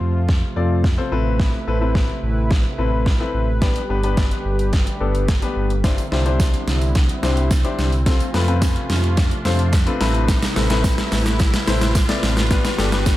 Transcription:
Already playing: C3 F3 A3 C4 F4 A4 C5, riser
0.01 F2
0.29 kick, snare
0.56 F2 C4 F4 A4 D5
0.84 kick, snare
0.98 C4 F4 A4 C5
1.12 A1 C4 E4 A4 B4
1.40 kick, snare
1.67 A1 C4 E4 A4 B4
1.81 C4 E4 A4 B4
1.95 kick, snare
2.23 A1
2.51 kick, snare
2.78 A1 C4 E4 A4 B4
3.06 kick, snare
3.20 C4 E4 A4 B4
3.34 A1
3.62 D3 G3 B3 D4 G4 B4, kick, snare, closed hi-hat
3.76 closed hi-hat
3.90 G1 B3 D4 G4 B4
4.03 B3 D4 G4 B4, closed hi-hat
4.17 kick, snare, closed hi-hat
4.31 closed hi-hat
4.45 G1
4.59 closed hi-hat
4.73 kick, snare, closed hi-hat
4.87 closed hi-hat
5.00 G1 B3 D4 G4 A4
5.15 closed hi-hat
5.28 kick, snare, closed hi-hat
5.42 B3 D4 G4 B4, closed hi-hat
5.56 G1
5.70 closed hi-hat
5.84 G3 C4 D4 E4 G4 C5, kick, snare, closed hi-hat, tambourine
5.98 closed hi-hat, tambourine
6.12 C2 D4 E4 G4 C5, snare
6.25 D4 E4 G4 C5, closed hi-hat
6.40 kick, snare, closed hi-hat, tambourine
6.54 closed hi-hat
6.67 C2, snare, tambourine
6.81 closed hi-hat, tambourine
6.95 kick, snare, closed hi-hat, tambourine
7.09 closed hi-hat
7.23 C2 D4 E4 G4 C5, snare, tambourine
7.37 closed hi-hat, tambourine
7.51 kick, snare, closed hi-hat, tambourine
7.64 D4 E4 G4 C5, closed hi-hat
7.79 C2, snare, tambourine
7.92 closed hi-hat, tambourine
8.06 C3 F3 A3 C4 F4 A4 C5, kick, snare, closed hi-hat, tambourine
8.20 closed hi-hat, tambourine
8.34 F2 C4 F4 A4 B4, snare, open hi-hat
8.48 C4 F4 A4 B4, closed hi-hat
8.62 kick, snare, closed hi-hat, tambourine
8.76 closed hi-hat
8.90 F2, snare, open hi-hat, tambourine
9.04 closed hi-hat
9.17 kick, snare, closed hi-hat, tambourine
9.31 closed hi-hat
9.45 F2 C4 F4 A4 C5, snare, open hi-hat, tambourine
9.59 closed hi-hat
9.73 kick, snare, closed hi-hat, tambourine
9.87 C4 F4 A4 B4, closed hi-hat
10.01 A1 C4 E4 A4 B4, snare, open hi-hat, tambourine
10.15 closed hi-hat
10.28 kick, snare, closed hi-hat, tambourine, shaker
10.42 snare, closed hi-hat, tambourine, shaker
10.56 A1 C4 E4 A4 B4, snare, open hi-hat, shaker
10.70 C4 E4 A4 B4, snare, closed hi-hat, tambourine, shaker
10.84 kick, snare, closed hi-hat, tambourine, shaker
10.98 snare, closed hi-hat, shaker
11.12 A1, snare, open hi-hat, tambourine, shaker
11.26 snare, closed hi-hat, shaker
11.39 kick, snare, closed hi-hat, tambourine, shaker
11.54 snare, closed hi-hat, shaker
11.67 A1 C4 E4 A4 C5, snare, open hi-hat, tambourine, shaker
11.81 snare, closed hi-hat, tambourine, shaker
11.95 kick, snare, closed hi-hat, tambourine, shaker
12.09 C4 E4 A4 D5, snare, closed hi-hat, shaker
12.23 A1, snare, open hi-hat, tambourine, shaker
12.37 snare, closed hi-hat, shaker
12.51 D3 G3 B3 D4 G4 B4, kick, snare, closed hi-hat, tambourine, shaker
12.65 snare, closed hi-hat, tambourine, shaker
12.78 G1 B3 D4 G4 A4, snare, open hi-hat, shaker
12.92 B3 D4 G4 B4, snare, closed hi-hat, shaker
13.06 kick, snare, closed hi-hat, tambourine, shaker

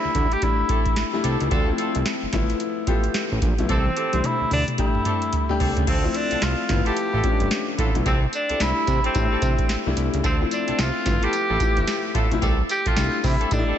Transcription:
Already playing: G3 A3 D4 E4
0.05 D2
0.15 D2, kick, closed hi-hat
0.32 G4, closed hi-hat
0.42 G3 A3 D4 E4, kick, closed hi-hat
0.69 C4 E4 G4 A4, kick, closed hi-hat
0.86 kick, closed hi-hat
0.96 snare, closed hi-hat
1.13 G3 A3 D4 E4
1.24 C2 C4 E4 G4 A4, closed hi-hat
1.40 C#2, closed hi-hat
1.51 D2 C4 D4 F4 A4, kick, closed hi-hat
1.67 F3 A3 C4 E4
1.78 C4 D4 F4 A4, closed hi-hat
1.95 C2, closed hi-hat
2.06 snare, closed hi-hat
2.23 G1
2.33 G1 F3 A3 B3 E4, kick, snare, closed hi-hat
2.50 closed hi-hat
2.60 closed hi-hat
2.87 F3 A3 B3 E4 F4 G4 A4, kick, closed hi-hat
3.04 closed hi-hat
3.14 snare, closed hi-hat
3.32 A1
3.42 A#1, kick, closed hi-hat
3.58 B1 F3 A3 B3 E4, closed hi-hat
3.69 C2 C4 E4 G4 A4, kick, closed hi-hat, high tom
3.86 high tom
3.96 C4 E4 G4 A4, closed hi-hat
4.13 C2 G3 A3 D4 E4, closed hi-hat, high tom
4.24 E4, closed hi-hat, mid tom
4.41 D2
4.51 D2 D4, open hi-hat, mid tom
4.68 closed hi-hat, mid tom
4.78 G3 A3 D4 E4 G4, kick, closed hi-hat
4.95 mid tom
5.05 C4 E4 G4 A4, closed hi-hat, mid tom
5.22 closed hi-hat
5.33 closed hi-hat, floor tom
5.49 G3 A3 D4 G4, floor tom
5.60 C2 C4 E4 G4 A4, floor tom, open hi-hat
5.77 C#2, closed hi-hat, floor tom
5.87 D2 C4 D4 F4 A4, kick, closed hi-hat, crash
6.04 F3 A3 C4 E4
6.14 D4, closed hi-hat
6.31 C2 C4 D4 F4 A4, closed hi-hat
6.42 C2 F4, snare, closed hi-hat
6.69 G1 F3 A3 B3 E4, kick, snare, closed hi-hat
6.86 B3 E4 F4 G4 A4, closed hi-hat
6.97 closed hi-hat
7.13 A1 B3 E4 F4 A4
7.24 F3 A3 B3 C#4, kick, closed hi-hat
7.31 D4
7.40 G1, closed hi-hat
7.51 snare, closed hi-hat
7.78 A1 B3 E4 F4 A4, kick, closed hi-hat
7.95 B1 F3 A3 B3 E4, closed hi-hat
8.06 C2 C4 E4 G4 A4, kick, closed hi-hat, tambourine
8.33 D4, closed hi-hat, tambourine
8.49 C2 C4 E4 G4 A4, closed hi-hat
8.60 C2 G3 A3 D4 E4, snare, closed hi-hat, tambourine
8.87 C3, kick, closed hi-hat, tambourine
9.04 C4 E4 G4 A4, closed hi-hat
9.15 A2 G3 A3 D4 E4, kick, closed hi-hat, tambourine
9.31 C4 E4 G4 A4
9.42 C3, kick, closed hi-hat, tambourine
9.59 kick, closed hi-hat
9.69 snare, closed hi-hat, tambourine
9.86 C2 G3 A3 D4 E4
9.97 C2, closed hi-hat
10.14 C#2, closed hi-hat
10.24 D2 C4 D4 F4 A4, kick, closed hi-hat, tambourine
10.40 F3 A3 C4 E4
10.51 D4, closed hi-hat, tambourine
10.68 C2 C4 D4 F4 A4, closed hi-hat
10.79 C2 F4, snare, closed hi-hat, tambourine
11.06 G1 F3 A3 B3 E4, kick, snare, closed hi-hat, tambourine
11.22 B3 E4 F4 G4 A4, closed hi-hat
11.33 closed hi-hat, tambourine
11.49 A1 B3 E4 F4 A4
11.60 F3 A3 B3 E4, kick, closed hi-hat, tambourine
11.77 G1, closed hi-hat
11.87 snare, closed hi-hat, tambourine
12.15 A1 B3 E4 F4 A4, kick, closed hi-hat
12.31 B1 F3 A3 B3 E4, closed hi-hat
12.42 C2 C4 E4 G4 A4, kick, closed hi-hat, tambourine
12.69 G4, closed hi-hat, tambourine
12.86 C2 C4 E4 F4 G4 A4, kick, closed hi-hat
12.96 C2 G3 A3 D4 E4, snare, closed hi-hat, tambourine
13.20 F4, kick, open hi-hat, tambourine
13.24 C3 E4
13.40 C4 E4 G4 A4, closed hi-hat
13.51 A2 G3 A3 D4 D#4, kick, closed hi-hat, tambourine
13.59 E4
13.67 C4 E4 G4 A4

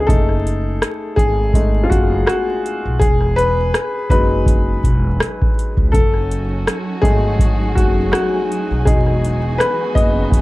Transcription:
Already playing: C#2
0.00 G#4
0.07 F#1 A3 D#4 G#4 A4, kick, closed hi-hat
0.29 cross-stick
0.47 closed hi-hat
0.82 cross-stick, closed hi-hat
1.16 G#1 G#4, kick, closed hi-hat
1.53 G#3 A3 D#4, kick, closed hi-hat
1.83 F4
1.90 F#1 F#4, kick, closed hi-hat
2.26 F#4, cross-stick, closed hi-hat
2.66 closed hi-hat
2.85 B1
2.99 E1 G#4, kick, closed hi-hat
3.21 cross-stick
3.36 B4, closed hi-hat
3.74 cross-stick, closed hi-hat
4.10 F#1 F#3 G#3 D#4 B4, kick, closed hi-hat
4.46 kick, closed hi-hat
4.84 E1, kick, closed hi-hat
5.20 cross-stick, closed hi-hat
5.42 kick
5.59 closed hi-hat
5.77 C#2, kick
5.92 F#1 F#3 C#4 D#4 F#4 A4 G#5, kick, closed hi-hat
6.14 cross-stick
6.31 closed hi-hat
6.67 cross-stick, closed hi-hat
7.02 G#1 G#3 A3 D#4 G#4, kick, closed hi-hat
7.39 kick, closed hi-hat
7.75 F#1 F#4, kick, closed hi-hat
8.12 F#4, cross-stick, closed hi-hat
8.52 closed hi-hat
8.71 B1
8.85 E1 E3 F#3 G#3 B3 D#4 F#4 G#4, kick, closed hi-hat
9.07 cross-stick
9.24 closed hi-hat
9.58 B4, cross-stick, closed hi-hat
9.95 F#1 D#5, kick, closed hi-hat
10.32 kick, closed hi-hat

